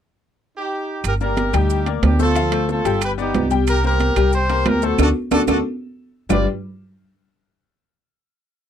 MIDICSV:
0, 0, Header, 1, 5, 480
1, 0, Start_track
1, 0, Key_signature, -2, "minor"
1, 0, Tempo, 327869
1, 1531, Time_signature, 4, 2, 24, 8
1, 12727, End_track
2, 0, Start_track
2, 0, Title_t, "Horn section"
2, 0, Program_c, 0, 61
2, 836, Note_on_c, 0, 67, 82
2, 837, Note_on_c, 0, 63, 63
2, 1494, Note_off_c, 0, 67, 0
2, 1495, Note_off_c, 0, 63, 0
2, 1560, Note_on_c, 0, 70, 100
2, 1561, Note_on_c, 0, 67, 72
2, 1662, Note_off_c, 0, 67, 0
2, 1662, Note_off_c, 0, 70, 0
2, 1795, Note_on_c, 0, 70, 82
2, 1797, Note_on_c, 0, 67, 69
2, 2231, Note_off_c, 0, 70, 0
2, 2232, Note_off_c, 0, 67, 0
2, 2277, Note_on_c, 0, 67, 77
2, 2280, Note_on_c, 0, 63, 68
2, 2745, Note_off_c, 0, 67, 0
2, 2747, Note_off_c, 0, 63, 0
2, 2997, Note_on_c, 0, 67, 76
2, 3002, Note_on_c, 0, 62, 64
2, 3210, Note_off_c, 0, 67, 0
2, 3213, Note_off_c, 0, 62, 0
2, 3238, Note_on_c, 0, 69, 103
2, 3240, Note_on_c, 0, 65, 80
2, 3899, Note_off_c, 0, 69, 0
2, 3900, Note_off_c, 0, 65, 0
2, 3960, Note_on_c, 0, 69, 90
2, 3965, Note_on_c, 0, 65, 75
2, 4397, Note_off_c, 0, 69, 0
2, 4400, Note_off_c, 0, 65, 0
2, 4443, Note_on_c, 0, 71, 89
2, 4450, Note_on_c, 0, 67, 70
2, 4546, Note_off_c, 0, 71, 0
2, 4551, Note_off_c, 0, 67, 0
2, 4686, Note_on_c, 0, 67, 82
2, 4695, Note_on_c, 0, 63, 70
2, 5121, Note_off_c, 0, 67, 0
2, 5126, Note_off_c, 0, 63, 0
2, 5405, Note_on_c, 0, 70, 106
2, 5419, Note_on_c, 0, 67, 80
2, 5618, Note_off_c, 0, 70, 0
2, 5625, Note_off_c, 0, 67, 0
2, 5648, Note_on_c, 0, 70, 95
2, 5658, Note_on_c, 0, 67, 71
2, 6307, Note_off_c, 0, 70, 0
2, 6313, Note_off_c, 0, 67, 0
2, 6360, Note_on_c, 0, 72, 108
2, 6372, Note_on_c, 0, 67, 77
2, 6833, Note_off_c, 0, 72, 0
2, 6839, Note_off_c, 0, 67, 0
2, 6849, Note_on_c, 0, 70, 97
2, 6861, Note_on_c, 0, 67, 75
2, 7077, Note_off_c, 0, 70, 0
2, 7083, Note_off_c, 0, 67, 0
2, 7094, Note_on_c, 0, 69, 89
2, 7104, Note_on_c, 0, 66, 67
2, 7312, Note_off_c, 0, 66, 0
2, 7312, Note_off_c, 0, 69, 0
2, 7329, Note_on_c, 0, 66, 105
2, 7329, Note_on_c, 0, 69, 100
2, 7331, Note_on_c, 0, 62, 98
2, 7437, Note_off_c, 0, 69, 0
2, 7438, Note_off_c, 0, 62, 0
2, 7438, Note_off_c, 0, 66, 0
2, 7805, Note_on_c, 0, 62, 99
2, 7805, Note_on_c, 0, 66, 92
2, 7807, Note_on_c, 0, 69, 97
2, 7914, Note_off_c, 0, 66, 0
2, 7915, Note_off_c, 0, 62, 0
2, 7916, Note_off_c, 0, 69, 0
2, 8049, Note_on_c, 0, 66, 96
2, 8050, Note_on_c, 0, 69, 89
2, 8054, Note_on_c, 0, 62, 88
2, 8157, Note_off_c, 0, 66, 0
2, 8158, Note_off_c, 0, 69, 0
2, 8161, Note_off_c, 0, 62, 0
2, 9244, Note_on_c, 0, 74, 85
2, 9458, Note_off_c, 0, 74, 0
2, 12727, End_track
3, 0, Start_track
3, 0, Title_t, "Upright piano"
3, 0, Program_c, 1, 0
3, 1769, Note_on_c, 1, 58, 67
3, 1775, Note_on_c, 1, 74, 64
3, 1776, Note_on_c, 1, 70, 67
3, 2164, Note_off_c, 1, 58, 0
3, 2168, Note_off_c, 1, 70, 0
3, 2168, Note_off_c, 1, 74, 0
3, 2242, Note_on_c, 1, 55, 89
3, 2247, Note_on_c, 1, 67, 78
3, 2256, Note_on_c, 1, 79, 83
3, 2641, Note_off_c, 1, 55, 0
3, 2644, Note_off_c, 1, 67, 0
3, 2649, Note_off_c, 1, 79, 0
3, 2726, Note_on_c, 1, 58, 69
3, 2733, Note_on_c, 1, 70, 73
3, 2738, Note_on_c, 1, 74, 73
3, 3124, Note_off_c, 1, 58, 0
3, 3128, Note_off_c, 1, 70, 0
3, 3131, Note_off_c, 1, 74, 0
3, 3212, Note_on_c, 1, 57, 72
3, 3212, Note_on_c, 1, 69, 78
3, 3215, Note_on_c, 1, 72, 75
3, 3410, Note_off_c, 1, 69, 0
3, 3411, Note_off_c, 1, 57, 0
3, 3412, Note_off_c, 1, 72, 0
3, 3451, Note_on_c, 1, 53, 81
3, 3455, Note_on_c, 1, 65, 72
3, 3463, Note_on_c, 1, 77, 75
3, 3650, Note_off_c, 1, 53, 0
3, 3653, Note_off_c, 1, 65, 0
3, 3657, Note_off_c, 1, 77, 0
3, 3686, Note_on_c, 1, 57, 72
3, 3693, Note_on_c, 1, 69, 66
3, 3699, Note_on_c, 1, 72, 71
3, 4085, Note_off_c, 1, 57, 0
3, 4089, Note_off_c, 1, 69, 0
3, 4092, Note_off_c, 1, 72, 0
3, 4169, Note_on_c, 1, 55, 81
3, 4175, Note_on_c, 1, 67, 85
3, 4180, Note_on_c, 1, 79, 87
3, 4568, Note_off_c, 1, 55, 0
3, 4571, Note_off_c, 1, 67, 0
3, 4574, Note_off_c, 1, 79, 0
3, 4650, Note_on_c, 1, 59, 80
3, 4654, Note_on_c, 1, 71, 76
3, 4662, Note_on_c, 1, 74, 77
3, 5049, Note_off_c, 1, 59, 0
3, 5051, Note_off_c, 1, 71, 0
3, 5056, Note_off_c, 1, 74, 0
3, 5132, Note_on_c, 1, 55, 92
3, 5141, Note_on_c, 1, 67, 88
3, 5143, Note_on_c, 1, 79, 87
3, 5531, Note_off_c, 1, 55, 0
3, 5536, Note_off_c, 1, 67, 0
3, 5537, Note_off_c, 1, 79, 0
3, 5626, Note_on_c, 1, 58, 70
3, 5628, Note_on_c, 1, 70, 72
3, 5634, Note_on_c, 1, 72, 68
3, 6019, Note_off_c, 1, 58, 0
3, 6020, Note_off_c, 1, 70, 0
3, 6024, Note_off_c, 1, 72, 0
3, 6103, Note_on_c, 1, 55, 93
3, 6106, Note_on_c, 1, 67, 85
3, 6110, Note_on_c, 1, 79, 86
3, 6498, Note_off_c, 1, 55, 0
3, 6499, Note_off_c, 1, 67, 0
3, 6502, Note_off_c, 1, 79, 0
3, 6582, Note_on_c, 1, 58, 73
3, 6590, Note_on_c, 1, 70, 77
3, 6596, Note_on_c, 1, 72, 74
3, 6977, Note_off_c, 1, 58, 0
3, 6982, Note_off_c, 1, 70, 0
3, 6986, Note_off_c, 1, 72, 0
3, 7066, Note_on_c, 1, 57, 68
3, 7070, Note_on_c, 1, 69, 81
3, 7077, Note_on_c, 1, 72, 74
3, 7263, Note_off_c, 1, 57, 0
3, 7265, Note_off_c, 1, 69, 0
3, 7269, Note_off_c, 1, 72, 0
3, 7304, Note_on_c, 1, 69, 91
3, 7306, Note_on_c, 1, 62, 93
3, 7307, Note_on_c, 1, 66, 94
3, 7459, Note_off_c, 1, 69, 0
3, 7460, Note_off_c, 1, 62, 0
3, 7460, Note_off_c, 1, 66, 0
3, 7777, Note_on_c, 1, 62, 93
3, 7779, Note_on_c, 1, 69, 86
3, 7780, Note_on_c, 1, 66, 91
3, 7934, Note_off_c, 1, 62, 0
3, 7935, Note_off_c, 1, 69, 0
3, 7936, Note_off_c, 1, 66, 0
3, 8019, Note_on_c, 1, 62, 92
3, 8020, Note_on_c, 1, 66, 87
3, 8022, Note_on_c, 1, 69, 104
3, 8176, Note_off_c, 1, 62, 0
3, 8176, Note_off_c, 1, 66, 0
3, 8177, Note_off_c, 1, 69, 0
3, 9213, Note_on_c, 1, 55, 86
3, 9216, Note_on_c, 1, 62, 77
3, 9221, Note_on_c, 1, 65, 75
3, 9225, Note_on_c, 1, 67, 72
3, 9227, Note_on_c, 1, 71, 72
3, 9228, Note_on_c, 1, 74, 85
3, 9441, Note_off_c, 1, 55, 0
3, 9443, Note_off_c, 1, 62, 0
3, 9446, Note_off_c, 1, 65, 0
3, 9448, Note_off_c, 1, 67, 0
3, 9449, Note_off_c, 1, 71, 0
3, 9449, Note_off_c, 1, 74, 0
3, 12727, End_track
4, 0, Start_track
4, 0, Title_t, "Upright bass"
4, 0, Program_c, 2, 32
4, 1520, Note_on_c, 2, 31, 80
4, 2196, Note_off_c, 2, 31, 0
4, 2248, Note_on_c, 2, 38, 88
4, 2921, Note_off_c, 2, 38, 0
4, 2967, Note_on_c, 2, 38, 93
4, 4091, Note_off_c, 2, 38, 0
4, 4170, Note_on_c, 2, 31, 81
4, 4845, Note_off_c, 2, 31, 0
4, 4892, Note_on_c, 2, 36, 92
4, 6017, Note_off_c, 2, 36, 0
4, 6094, Note_on_c, 2, 36, 81
4, 6769, Note_off_c, 2, 36, 0
4, 6816, Note_on_c, 2, 38, 89
4, 7267, Note_off_c, 2, 38, 0
4, 7298, Note_on_c, 2, 38, 85
4, 7480, Note_off_c, 2, 38, 0
4, 7778, Note_on_c, 2, 38, 85
4, 7960, Note_off_c, 2, 38, 0
4, 8013, Note_on_c, 2, 38, 87
4, 8198, Note_off_c, 2, 38, 0
4, 9215, Note_on_c, 2, 31, 86
4, 9443, Note_off_c, 2, 31, 0
4, 12727, End_track
5, 0, Start_track
5, 0, Title_t, "Drums"
5, 1522, Note_on_c, 9, 75, 70
5, 1525, Note_on_c, 9, 63, 35
5, 1526, Note_on_c, 9, 70, 84
5, 1529, Note_on_c, 9, 65, 84
5, 1669, Note_off_c, 9, 75, 0
5, 1671, Note_off_c, 9, 63, 0
5, 1673, Note_off_c, 9, 70, 0
5, 1675, Note_off_c, 9, 65, 0
5, 1766, Note_on_c, 9, 70, 27
5, 1767, Note_on_c, 9, 63, 33
5, 1912, Note_off_c, 9, 70, 0
5, 1913, Note_off_c, 9, 63, 0
5, 2004, Note_on_c, 9, 63, 81
5, 2007, Note_on_c, 9, 70, 28
5, 2012, Note_on_c, 9, 65, 70
5, 2012, Note_on_c, 9, 66, 55
5, 2150, Note_off_c, 9, 63, 0
5, 2154, Note_off_c, 9, 70, 0
5, 2159, Note_off_c, 9, 65, 0
5, 2159, Note_off_c, 9, 66, 0
5, 2246, Note_on_c, 9, 70, 59
5, 2249, Note_on_c, 9, 75, 59
5, 2255, Note_on_c, 9, 65, 83
5, 2392, Note_off_c, 9, 70, 0
5, 2396, Note_off_c, 9, 75, 0
5, 2402, Note_off_c, 9, 65, 0
5, 2487, Note_on_c, 9, 63, 34
5, 2487, Note_on_c, 9, 70, 70
5, 2633, Note_off_c, 9, 63, 0
5, 2633, Note_off_c, 9, 70, 0
5, 2725, Note_on_c, 9, 63, 33
5, 2729, Note_on_c, 9, 65, 66
5, 2732, Note_on_c, 9, 70, 25
5, 2872, Note_off_c, 9, 63, 0
5, 2876, Note_off_c, 9, 65, 0
5, 2878, Note_off_c, 9, 70, 0
5, 2965, Note_on_c, 9, 63, 76
5, 2970, Note_on_c, 9, 65, 90
5, 2970, Note_on_c, 9, 66, 86
5, 2971, Note_on_c, 9, 70, 28
5, 2973, Note_on_c, 9, 75, 56
5, 3111, Note_off_c, 9, 63, 0
5, 3117, Note_off_c, 9, 65, 0
5, 3117, Note_off_c, 9, 66, 0
5, 3117, Note_off_c, 9, 70, 0
5, 3119, Note_off_c, 9, 75, 0
5, 3206, Note_on_c, 9, 63, 69
5, 3213, Note_on_c, 9, 70, 64
5, 3353, Note_off_c, 9, 63, 0
5, 3360, Note_off_c, 9, 70, 0
5, 3449, Note_on_c, 9, 65, 67
5, 3451, Note_on_c, 9, 70, 79
5, 3595, Note_off_c, 9, 65, 0
5, 3598, Note_off_c, 9, 70, 0
5, 3690, Note_on_c, 9, 65, 98
5, 3692, Note_on_c, 9, 63, 32
5, 3693, Note_on_c, 9, 75, 61
5, 3696, Note_on_c, 9, 70, 30
5, 3836, Note_off_c, 9, 65, 0
5, 3838, Note_off_c, 9, 63, 0
5, 3839, Note_off_c, 9, 75, 0
5, 3842, Note_off_c, 9, 70, 0
5, 3934, Note_on_c, 9, 66, 61
5, 3936, Note_on_c, 9, 70, 31
5, 3938, Note_on_c, 9, 63, 55
5, 4081, Note_off_c, 9, 66, 0
5, 4083, Note_off_c, 9, 70, 0
5, 4084, Note_off_c, 9, 63, 0
5, 4177, Note_on_c, 9, 65, 62
5, 4178, Note_on_c, 9, 63, 31
5, 4179, Note_on_c, 9, 70, 67
5, 4323, Note_off_c, 9, 65, 0
5, 4325, Note_off_c, 9, 63, 0
5, 4325, Note_off_c, 9, 70, 0
5, 4409, Note_on_c, 9, 75, 62
5, 4415, Note_on_c, 9, 70, 79
5, 4416, Note_on_c, 9, 65, 91
5, 4417, Note_on_c, 9, 63, 31
5, 4556, Note_off_c, 9, 75, 0
5, 4561, Note_off_c, 9, 70, 0
5, 4563, Note_off_c, 9, 63, 0
5, 4563, Note_off_c, 9, 65, 0
5, 4655, Note_on_c, 9, 63, 35
5, 4662, Note_on_c, 9, 70, 29
5, 4801, Note_off_c, 9, 63, 0
5, 4808, Note_off_c, 9, 70, 0
5, 4896, Note_on_c, 9, 63, 82
5, 4897, Note_on_c, 9, 65, 65
5, 4897, Note_on_c, 9, 66, 82
5, 4899, Note_on_c, 9, 70, 28
5, 5043, Note_off_c, 9, 63, 0
5, 5043, Note_off_c, 9, 65, 0
5, 5043, Note_off_c, 9, 66, 0
5, 5046, Note_off_c, 9, 70, 0
5, 5133, Note_on_c, 9, 70, 63
5, 5135, Note_on_c, 9, 63, 76
5, 5279, Note_off_c, 9, 70, 0
5, 5281, Note_off_c, 9, 63, 0
5, 5373, Note_on_c, 9, 70, 84
5, 5379, Note_on_c, 9, 75, 64
5, 5383, Note_on_c, 9, 65, 83
5, 5519, Note_off_c, 9, 70, 0
5, 5526, Note_off_c, 9, 75, 0
5, 5529, Note_off_c, 9, 65, 0
5, 5618, Note_on_c, 9, 70, 34
5, 5764, Note_off_c, 9, 70, 0
5, 5852, Note_on_c, 9, 63, 87
5, 5856, Note_on_c, 9, 70, 30
5, 5864, Note_on_c, 9, 65, 69
5, 5864, Note_on_c, 9, 66, 58
5, 5998, Note_off_c, 9, 63, 0
5, 6002, Note_off_c, 9, 70, 0
5, 6010, Note_off_c, 9, 65, 0
5, 6010, Note_off_c, 9, 66, 0
5, 6095, Note_on_c, 9, 65, 82
5, 6096, Note_on_c, 9, 70, 69
5, 6100, Note_on_c, 9, 75, 62
5, 6241, Note_off_c, 9, 65, 0
5, 6243, Note_off_c, 9, 70, 0
5, 6246, Note_off_c, 9, 75, 0
5, 6333, Note_on_c, 9, 70, 71
5, 6339, Note_on_c, 9, 63, 33
5, 6479, Note_off_c, 9, 70, 0
5, 6486, Note_off_c, 9, 63, 0
5, 6581, Note_on_c, 9, 65, 65
5, 6581, Note_on_c, 9, 70, 27
5, 6583, Note_on_c, 9, 63, 35
5, 6727, Note_off_c, 9, 70, 0
5, 6728, Note_off_c, 9, 65, 0
5, 6729, Note_off_c, 9, 63, 0
5, 6818, Note_on_c, 9, 63, 77
5, 6818, Note_on_c, 9, 65, 89
5, 6818, Note_on_c, 9, 66, 76
5, 6818, Note_on_c, 9, 70, 28
5, 6823, Note_on_c, 9, 75, 63
5, 6964, Note_off_c, 9, 63, 0
5, 6964, Note_off_c, 9, 65, 0
5, 6964, Note_off_c, 9, 66, 0
5, 6965, Note_off_c, 9, 70, 0
5, 6970, Note_off_c, 9, 75, 0
5, 7054, Note_on_c, 9, 63, 77
5, 7058, Note_on_c, 9, 70, 63
5, 7201, Note_off_c, 9, 63, 0
5, 7204, Note_off_c, 9, 70, 0
5, 7294, Note_on_c, 9, 63, 91
5, 7300, Note_on_c, 9, 75, 100
5, 7301, Note_on_c, 9, 70, 97
5, 7306, Note_on_c, 9, 65, 91
5, 7440, Note_off_c, 9, 63, 0
5, 7446, Note_off_c, 9, 75, 0
5, 7447, Note_off_c, 9, 70, 0
5, 7453, Note_off_c, 9, 65, 0
5, 7777, Note_on_c, 9, 70, 100
5, 7779, Note_on_c, 9, 63, 94
5, 7783, Note_on_c, 9, 65, 99
5, 7787, Note_on_c, 9, 75, 92
5, 7924, Note_off_c, 9, 70, 0
5, 7925, Note_off_c, 9, 63, 0
5, 7929, Note_off_c, 9, 65, 0
5, 7933, Note_off_c, 9, 75, 0
5, 8013, Note_on_c, 9, 63, 89
5, 8016, Note_on_c, 9, 70, 96
5, 8020, Note_on_c, 9, 65, 100
5, 8027, Note_on_c, 9, 75, 91
5, 8160, Note_off_c, 9, 63, 0
5, 8162, Note_off_c, 9, 70, 0
5, 8167, Note_off_c, 9, 65, 0
5, 8173, Note_off_c, 9, 75, 0
5, 9220, Note_on_c, 9, 70, 103
5, 9224, Note_on_c, 9, 64, 103
5, 9225, Note_on_c, 9, 75, 95
5, 9227, Note_on_c, 9, 66, 82
5, 9366, Note_off_c, 9, 70, 0
5, 9371, Note_off_c, 9, 64, 0
5, 9372, Note_off_c, 9, 75, 0
5, 9374, Note_off_c, 9, 66, 0
5, 12727, End_track
0, 0, End_of_file